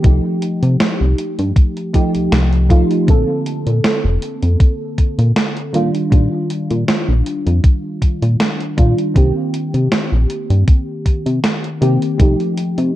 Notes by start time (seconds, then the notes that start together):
0.03 C2 F3 A3 D#4 G4, kick, closed hi-hat
0.42 closed hi-hat
0.63 C3, closed hi-hat
0.80 snare, closed hi-hat
1.01 C2
1.18 closed hi-hat
1.39 G2, closed hi-hat
1.56 kick, closed hi-hat
1.77 closed hi-hat
1.94 F3 A3 D#4 G4, kick, closed hi-hat
2.15 C2, closed hi-hat
2.32 C2, snare, closed hi-hat
2.53 closed hi-hat
2.69 F3 A3 D#4 F4, kick, closed hi-hat
2.91 closed hi-hat
3.07 A#1 D3 A#3 C4 A4, kick, closed hi-hat
3.46 closed hi-hat
3.67 A#2, closed hi-hat
3.84 snare, closed hi-hat
4.05 F1
4.22 closed hi-hat
4.43 F2, closed hi-hat
4.60 kick, closed hi-hat
4.98 kick, closed hi-hat
5.19 A#2, closed hi-hat
5.36 snare, closed hi-hat
5.57 closed hi-hat
5.73 A#2 D#3 G3 D4 F4, closed hi-hat
5.95 closed hi-hat
6.10 A#1 D#3 G3 D4 F4, kick, closed hi-hat
6.50 closed hi-hat
6.70 A#2, closed hi-hat
6.88 snare, closed hi-hat
7.09 A#1
7.26 closed hi-hat
7.46 F2, closed hi-hat
7.64 kick, closed hi-hat
8.02 kick, closed hi-hat
8.22 A#2, closed hi-hat
8.40 snare, closed hi-hat
8.60 closed hi-hat
8.77 A#2 D#3 G3 D4 F4, kick, closed hi-hat
8.98 closed hi-hat
9.14 C2 D#3 A#3 C4 G4, kick, closed hi-hat
9.54 closed hi-hat
9.74 C3, closed hi-hat
9.92 snare, closed hi-hat
10.12 A#1
10.30 closed hi-hat
10.50 G2, closed hi-hat
10.68 kick, closed hi-hat
11.06 kick, closed hi-hat
11.26 C3, closed hi-hat
11.44 snare, closed hi-hat
11.64 closed hi-hat
11.81 C3 D#3 A#3 C4 G4, closed hi-hat
12.02 closed hi-hat
12.18 C2 F3 A3 D#4 G4, kick, closed hi-hat
12.40 closed hi-hat
12.57 closed hi-hat
12.78 C3, closed hi-hat